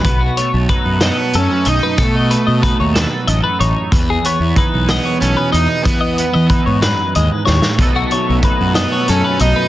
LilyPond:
<<
  \new Staff \with { instrumentName = "Clean electric guitar" } { \time 6/8 \key b \mixolydian \tempo 4. = 62 b'16 fis'16 cis''8 b'8 dis''16 cis''16 a'16 b'16 dis''16 b'16 | a'16 dis''16 b'16 dis''16 b'16 cis''16 b'8 dis''16 b'16 cis''8 | b'16 gis'16 cis''8 b'8 dis''16 cis''16 a'16 b'16 dis''16 b'16 | gis'16 dis''16 b'16 dis''16 b'16 cis''16 b'8 dis''16 b'16 cis''8 |
b'16 fis'16 cis''8 b'8 dis''16 cis''16 a'16 b'16 dis''16 b'16 | }
  \new Staff \with { instrumentName = "Overdriven electric guitar" } { \time 6/8 \key b \mixolydian r4. b8 cis'8 dis'8 | a4. r4. | r4. b8 cis'8 dis'8 | b4. r4. |
r4. b8 cis'8 dis'8 | }
  \new Staff \with { instrumentName = "Clean electric guitar" } { \time 6/8 \key b \mixolydian << { r8 a8 dis'8 a'8 a8 dis'8 | r8 a8 dis'8 a'8 a8 dis'8 | r8 b8 dis'8 gis'8 a16 b16 dis'8 | r8 b8 dis'2 |
<fis a dis' a'>8 a8 dis'8 a'8 a8 dis'8 | } \\ { b,4 fis4 fis,4 | b,4 fis4 fis,4 | e,4 e4 b,4 | e,4 e8 fis,8 gis,8 a,8 |
b,4 fis4 fis,4 | } >> }
  \new Staff \with { instrumentName = "Overdriven electric guitar" } { \clef bass \time 6/8 \key b \mixolydian r2. | r2. | r2. | r2. |
<b, fis a dis'>2. | }
  \new Staff \with { instrumentName = "Fingered electric bass" } { \clef bass \time 6/8 \key b \mixolydian b,,8 r16 b,,16 r16 fis,8 r16 fis,16 r16 b,,16 r16 | b,8. b,8 dis,8 r16 a,,16 r16 a,,16 r16 | e,8 r16 e,16 r16 b,,8 r16 b,,16 r16 e,16 r16 | e8. e8 gis,8 r16 dis,16 r16 dis,16 r16 |
b,,8 r16 b,,16 r16 fis,8 r16 fis,16 r16 b,,16 r16 | }
  \new DrumStaff \with { instrumentName = "Drums" } \drummode { \time 6/8 <hh bd>8 hh8 <hh bd>8 <hh sn>8 hh8 hh8 | <hh bd>8 hh8 <hh bd>8 <hh sn>8 hh8 hh8 | <hh bd>8 hh8 <hh bd>8 <hh sn>8 hh8 hh8 | <hh bd>8 hh8 <hh bd>8 <hh sn>8 hh8 sn16 sn16 |
<hh bd>8 hh8 <hh bd>8 <hh sn>8 hh8 hh8 | }
>>